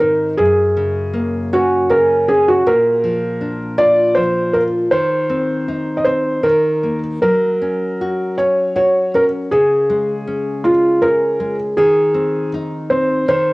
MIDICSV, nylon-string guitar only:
0, 0, Header, 1, 2, 480
1, 0, Start_track
1, 0, Tempo, 754717
1, 247, Time_signature, 3, 2, 24, 8
1, 3604, Tempo, 773196
1, 5524, Tempo, 753769
1, 8563, End_track
2, 0, Start_track
2, 0, Title_t, "Nylon-string guitar"
2, 0, Program_c, 0, 24
2, 0, Note_on_c, 0, 44, 58
2, 0, Note_on_c, 0, 51, 44
2, 0, Note_on_c, 0, 60, 44
2, 1, Note_on_c, 0, 63, 45
2, 216, Note_off_c, 0, 60, 0
2, 219, Note_off_c, 0, 44, 0
2, 229, Note_off_c, 0, 51, 0
2, 239, Note_off_c, 0, 63, 0
2, 241, Note_on_c, 0, 42, 57
2, 488, Note_on_c, 0, 49, 45
2, 722, Note_on_c, 0, 58, 47
2, 973, Note_on_c, 0, 61, 53
2, 1198, Note_off_c, 0, 49, 0
2, 1206, Note_on_c, 0, 49, 45
2, 1447, Note_off_c, 0, 61, 0
2, 1454, Note_on_c, 0, 61, 47
2, 1663, Note_off_c, 0, 58, 0
2, 1664, Note_off_c, 0, 42, 0
2, 1675, Note_off_c, 0, 49, 0
2, 1686, Note_off_c, 0, 61, 0
2, 1694, Note_on_c, 0, 46, 61
2, 1931, Note_on_c, 0, 53, 48
2, 2169, Note_on_c, 0, 62, 43
2, 2404, Note_on_c, 0, 65, 50
2, 2642, Note_off_c, 0, 53, 0
2, 2650, Note_on_c, 0, 53, 42
2, 2880, Note_off_c, 0, 65, 0
2, 2888, Note_on_c, 0, 65, 43
2, 3101, Note_off_c, 0, 62, 0
2, 3102, Note_off_c, 0, 46, 0
2, 3114, Note_off_c, 0, 53, 0
2, 3120, Note_off_c, 0, 65, 0
2, 3130, Note_on_c, 0, 51, 58
2, 3368, Note_on_c, 0, 60, 45
2, 3614, Note_on_c, 0, 63, 44
2, 3838, Note_off_c, 0, 60, 0
2, 3846, Note_on_c, 0, 60, 50
2, 4060, Note_off_c, 0, 51, 0
2, 4073, Note_off_c, 0, 63, 0
2, 4078, Note_off_c, 0, 60, 0
2, 4079, Note_on_c, 0, 51, 53
2, 4327, Note_on_c, 0, 58, 41
2, 4551, Note_off_c, 0, 51, 0
2, 4561, Note_off_c, 0, 58, 0
2, 4571, Note_on_c, 0, 54, 57
2, 4814, Note_on_c, 0, 61, 42
2, 5059, Note_on_c, 0, 66, 41
2, 5286, Note_off_c, 0, 61, 0
2, 5294, Note_on_c, 0, 61, 48
2, 5515, Note_off_c, 0, 66, 0
2, 5522, Note_on_c, 0, 66, 45
2, 5759, Note_off_c, 0, 61, 0
2, 5767, Note_on_c, 0, 61, 46
2, 5981, Note_off_c, 0, 54, 0
2, 5989, Note_off_c, 0, 66, 0
2, 5999, Note_off_c, 0, 61, 0
2, 6009, Note_on_c, 0, 49, 57
2, 6249, Note_on_c, 0, 56, 48
2, 6490, Note_on_c, 0, 61, 49
2, 6722, Note_off_c, 0, 56, 0
2, 6729, Note_on_c, 0, 56, 49
2, 6959, Note_off_c, 0, 61, 0
2, 6967, Note_on_c, 0, 61, 46
2, 7197, Note_off_c, 0, 56, 0
2, 7205, Note_on_c, 0, 56, 52
2, 7420, Note_off_c, 0, 49, 0
2, 7430, Note_off_c, 0, 61, 0
2, 7437, Note_off_c, 0, 56, 0
2, 7445, Note_on_c, 0, 51, 58
2, 7679, Note_on_c, 0, 60, 49
2, 7932, Note_on_c, 0, 63, 48
2, 8156, Note_off_c, 0, 60, 0
2, 8164, Note_on_c, 0, 60, 54
2, 8382, Note_off_c, 0, 51, 0
2, 8396, Note_off_c, 0, 63, 0
2, 8399, Note_off_c, 0, 60, 0
2, 8405, Note_on_c, 0, 51, 60
2, 8563, Note_off_c, 0, 51, 0
2, 8563, End_track
0, 0, End_of_file